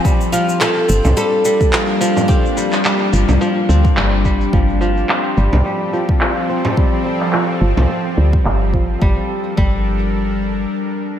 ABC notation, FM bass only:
X:1
M:4/4
L:1/16
Q:"Swing 16ths" 1/4=107
K:Gm
V:1 name="FM bass" clef=bass
z6 G,,, C,, z8 | z6 G,,, C,, z2 D,,2 G,,,4 | G,,,4 z2 G,,, C,, z8 | z6 G,,, C,, z2 D,,2 G,,,4 |
G,,, z3 G,,,8 z4 |]